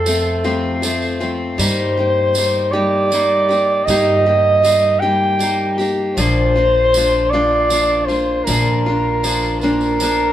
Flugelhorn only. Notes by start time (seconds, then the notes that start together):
Already playing: A4
1.58 C5
2.72 D5
3.85 D#5
5.00 G5
6.15 C5
7.30 D5
8.06 C5
8.44 A#4
9.61 A#4